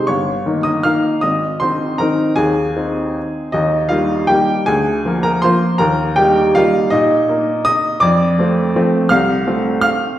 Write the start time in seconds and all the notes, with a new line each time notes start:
0.07 G1 C#5 C#6
0.46 D#3 A#3 D#4
0.63 D#5 D#6
0.83 D#3 A#3 D#4 F5 F6
1.21 G#1 D#5 D#6
1.60 D#3 C4 D#4 C5 C6
1.98 D#3 C4 D#4 A#4 A#5
2.36 D#2 G#4 G#5
2.76 C4 D#4
3.52 D#2 D#4 D#5
3.89 G3 A#3 D#4 F4 F5
4.27 G3 A#3 D#4 G4 G5
4.66 D2 G#4 G#5
5.05 F3 A#3 F4
5.23 A#4 A#5
5.42 F3 A#3 F4 C5 C6
5.78 D#2 A#4 A#5
6.16 G3 A#3 D#4 G4 G5
6.55 G3 A#3 D#4 F4 F5
6.90 A#2 D#4 D#5
7.29 A#3 D#4
7.65 D#5 D#6
8.00 F2 D5 D6
8.39 F3 A3 C4
8.76 F3 A3 C4
9.09 C2 F5 F6
9.47 A3 C4
9.81 F5 F6